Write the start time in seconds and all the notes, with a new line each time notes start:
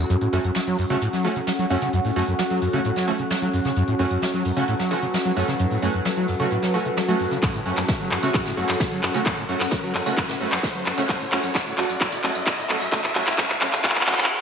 0.10 F#2 F#3 C#4 F#4, closed hi-hat, riser
0.21 A2, closed hi-hat
0.33 F#2 A3 C#4 F#4, closed hi-hat, open hi-hat
0.44 F#2, closed hi-hat
0.54 F#3 F#5, snare, closed hi-hat
0.67 F#3 A4, closed hi-hat
0.78 F#2, closed hi-hat, open hi-hat
0.90 C#3 A3 C#4 F#4, closed hi-hat
1.01 A2, closed hi-hat
1.13 F#3, snare, closed hi-hat
1.24 E3 A3 C#4 F#4, closed hi-hat, open hi-hat
1.36 C#3, closed hi-hat
1.47 F#3, snare, closed hi-hat
1.59 F#3, closed hi-hat
1.70 F#2 A3 C#4 F#4, closed hi-hat, open hi-hat
1.82 C#3, snare, closed hi-hat
1.93 F#2, closed hi-hat
2.05 A2, open hi-hat
2.16 F#2 A3 C#4 F#4, closed hi-hat, open hi-hat
2.28 F#2, closed hi-hat
2.39 F#3, snare, closed hi-hat
2.50 F#3, closed hi-hat
2.62 F#2, closed hi-hat, open hi-hat
2.73 C#3 A3 C#4 F#4, closed hi-hat
2.85 A2, closed hi-hat
2.96 F#3, snare, closed hi-hat
3.07 E3 A3 C#4 F#4, closed hi-hat, open hi-hat
3.19 C#3, closed hi-hat
3.31 F#3, snare, closed hi-hat
3.42 F#3, closed hi-hat
3.53 F#2, closed hi-hat, open hi-hat
3.65 C#3, snare, closed hi-hat
3.76 F#2, closed hi-hat
3.88 A2, closed hi-hat
3.99 F#2 A3 C#4 F#4, closed hi-hat, open hi-hat
4.11 F#2, closed hi-hat
4.21 F#3 B4, snare, closed hi-hat
4.34 F#3, closed hi-hat
4.45 F#2, closed hi-hat, open hi-hat
4.57 C#3 A3 C#4 F#4, closed hi-hat
4.68 A2, closed hi-hat
4.79 F#3, snare, closed hi-hat
4.91 E3 A3 C#4 F#4, closed hi-hat, open hi-hat
5.02 C#3, closed hi-hat
5.14 F#3, snare, closed hi-hat
5.25 F#3, closed hi-hat
5.37 F#2 A3 C#4 F#4, closed hi-hat, open hi-hat
5.48 C#3, snare, closed hi-hat
5.59 F#2, closed hi-hat
5.71 A2, open hi-hat
5.82 F#2 A3 C#4 F#4, closed hi-hat, open hi-hat
5.94 F#2, closed hi-hat
6.05 F#3, snare, closed hi-hat
6.17 F#3, closed hi-hat
6.28 F#2, closed hi-hat, open hi-hat
6.40 C#3 A3 C#4 F#4, closed hi-hat
6.51 A2, closed hi-hat
6.62 F#3, snare, closed hi-hat
6.74 E3 A3 C#4 F#4, closed hi-hat, open hi-hat
6.85 C#3, closed hi-hat
6.97 F#3, snare, closed hi-hat
7.08 F#3 A3 C#4 F#4, closed hi-hat
7.19 F#2, closed hi-hat, open hi-hat
7.31 C#3, snare, closed hi-hat
7.43 F#2, kick, clap, closed hi-hat, tambourine
7.54 A2, closed hi-hat, tambourine
7.65 F#2 A3 C#4 F#4, closed hi-hat, open hi-hat
7.77 F#2, clap, closed hi-hat, tambourine
7.87 F#3 F#5, kick, snare, closed hi-hat, tambourine
8.00 F#3, closed hi-hat, tambourine
8.11 F#2, clap, closed hi-hat, open hi-hat
8.23 C#3 A3 C#4 F#4, closed hi-hat, tambourine
8.34 F#2, kick, clap, closed hi-hat, tambourine
8.46 A2, snare, closed hi-hat, tambourine
8.57 F#2 A3 C#4 F#4, closed hi-hat, open hi-hat
8.69 F#2, clap, closed hi-hat, tambourine
8.80 F#3, kick, snare, closed hi-hat, tambourine
8.92 F#3, closed hi-hat, tambourine
9.03 F#2, clap, closed hi-hat, open hi-hat
9.14 C#3 A3 C#4 F#4, snare, closed hi-hat, tambourine
9.26 F#2, kick, clap, closed hi-hat, tambourine
9.37 A2, open hi-hat, tambourine
9.49 F#2 A3 C#4 F#4, closed hi-hat, open hi-hat
9.60 F#2, clap, closed hi-hat, tambourine
9.71 F#3, kick, snare, closed hi-hat, tambourine
9.83 F#3, closed hi-hat, tambourine
9.95 F#2, clap, closed hi-hat, open hi-hat
10.06 C#3 A3 C#4 F#4, closed hi-hat, tambourine
10.17 F#2, kick, clap, closed hi-hat, tambourine
10.29 A2, snare, closed hi-hat, tambourine
10.40 F#2 A3 C#4 F#4, closed hi-hat, open hi-hat
10.52 F#2, clap, closed hi-hat, tambourine
10.63 F#3, kick, snare, closed hi-hat, tambourine
10.75 F#3, closed hi-hat, tambourine
10.86 F#2, clap, closed hi-hat, open hi-hat
10.97 C#3 A3 C#4 F#4, snare, closed hi-hat, tambourine
11.09 F#2, kick, clap, closed hi-hat, tambourine
11.21 A2, closed hi-hat, tambourine
11.31 F#2 A3 C#4 F#4, clap, closed hi-hat, open hi-hat
11.43 F#2, closed hi-hat, tambourine
11.53 F#2 E5, kick, snare, clap, closed hi-hat, tambourine
11.66 A2, closed hi-hat, tambourine
11.78 F#2 A3 C#4 F#4, clap, closed hi-hat, open hi-hat
11.89 F#2, closed hi-hat, tambourine
12.01 F#2, kick, clap, closed hi-hat, tambourine
12.11 A2, snare, closed hi-hat, tambourine
12.24 F#2 A3 C#4 F#4, clap, closed hi-hat, open hi-hat
12.35 F#2, closed hi-hat, tambourine
12.46 F#2, kick, snare, clap, closed hi-hat, tambourine
12.58 A2, closed hi-hat, tambourine
12.69 F#2 A3 C#4 F#4, clap, closed hi-hat, open hi-hat
12.81 F#2, snare, closed hi-hat, tambourine
12.92 F#2 A3 C#4 F#4, kick, clap, closed hi-hat, tambourine
13.04 A2, clap, open hi-hat, tambourine
13.15 F#2 A3 C#4 F#4, clap, closed hi-hat, open hi-hat
13.27 A2, clap, closed hi-hat, tambourine
13.38 F#2 A3 C#4 F#4, kick, snare, clap, closed hi-hat, tambourine
13.50 A2, clap, closed hi-hat, tambourine
13.61 F#2 A3 C#4 F#4, clap, closed hi-hat, open hi-hat
13.73 A2, clap, closed hi-hat, tambourine
13.84 F#2 A3 C#4 F#4, kick, snare, clap, closed hi-hat, reverse cymbal
13.90 clap
13.95 A2, snare, clap, closed hi-hat, tambourine
14.01 clap
14.07 F#2 A3 C#4 F#4, snare, clap, closed hi-hat, open hi-hat
14.13 clap
14.18 A2, clap, closed hi-hat, tambourine
14.24 clap